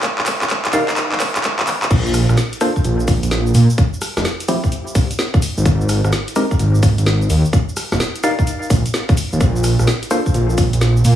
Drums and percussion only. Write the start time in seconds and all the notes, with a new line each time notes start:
0.03 kick, clap, closed hi-hat, cabasa
0.18 clap
0.26 clap, open hi-hat, cabasa
0.42 kick, clap, cabasa
0.50 clap, closed hi-hat, cabasa
0.65 clap, closed hi-hat
0.73 clap, open hi-hat, cabasa
0.89 kick, clap, closed hi-hat, cabasa
0.97 clap, closed hi-hat, cabasa
1.12 clap
1.20 kick, clap, open hi-hat, cabasa
1.36 clap, closed hi-hat, cabasa
1.44 clap, closed hi-hat, cabasa
1.59 kick, clap, closed hi-hat
1.67 clap, open hi-hat, cabasa
1.83 clap, cabasa
1.91 kick, closed hi-hat, crash, cabasa
2.06 cabasa
2.14 cross-stick, open hi-hat, cabasa
2.29 cross-stick, cabasa
2.38 snare, closed hi-hat, cabasa
2.53 closed hi-hat, cabasa
2.61 open hi-hat, cabasa
2.76 kick, cabasa
2.84 closed hi-hat, cabasa
3.00 cabasa
3.08 kick, open hi-hat, cabasa
3.23 closed hi-hat, cabasa
3.31 snare, closed hi-hat, cabasa
3.47 cabasa
3.55 open hi-hat, cabasa
3.70 cabasa
3.78 kick, closed hi-hat, cabasa
3.93 cabasa
4.02 cross-stick, open hi-hat, cabasa
4.17 cross-stick, snare, cabasa
4.25 snare, closed hi-hat, cabasa
4.40 closed hi-hat, cabasa
4.49 open hi-hat, cabasa
4.64 kick, cabasa
4.72 closed hi-hat, cabasa
4.87 cabasa
4.95 kick, open hi-hat, cabasa
5.11 closed hi-hat, cabasa
5.19 snare, closed hi-hat, cabasa
5.34 kick, cabasa
5.42 open hi-hat, cabasa
5.58 cabasa
5.65 kick, closed hi-hat, cabasa
5.81 cabasa
5.89 cross-stick, open hi-hat, cabasa
6.05 cross-stick, cabasa
6.13 snare, closed hi-hat, cabasa
6.28 closed hi-hat, cabasa
6.36 open hi-hat, cabasa
6.51 kick, cabasa
6.59 closed hi-hat, cabasa
6.75 cabasa
6.83 kick, open hi-hat, cabasa
6.98 closed hi-hat, cabasa
7.06 snare, closed hi-hat, cabasa
7.22 cabasa
7.30 open hi-hat, cabasa
7.45 cabasa
7.53 kick, closed hi-hat, cabasa
7.69 cabasa
7.77 cross-stick, open hi-hat, cabasa
7.92 cross-stick, snare, cabasa
8.00 snare, closed hi-hat, cabasa
8.16 closed hi-hat, cabasa
8.24 open hi-hat, cabasa
8.39 kick, cabasa
8.47 closed hi-hat, cabasa
8.62 cabasa
8.70 kick, open hi-hat, cabasa
8.86 closed hi-hat, cabasa
8.94 snare, closed hi-hat, cabasa
9.09 kick, cabasa
9.17 open hi-hat, cabasa
9.33 cabasa
9.41 kick, closed hi-hat, cabasa
9.56 cabasa
9.64 cross-stick, open hi-hat, cabasa
9.79 cross-stick, cabasa
9.87 snare, closed hi-hat, cabasa
10.03 closed hi-hat, cabasa
10.11 open hi-hat, cabasa
10.26 kick, cabasa
10.34 closed hi-hat, cabasa
10.50 cabasa
10.58 kick, open hi-hat, cabasa
10.73 closed hi-hat, cabasa
10.81 snare, closed hi-hat, cabasa
10.97 cabasa
11.05 open hi-hat, cabasa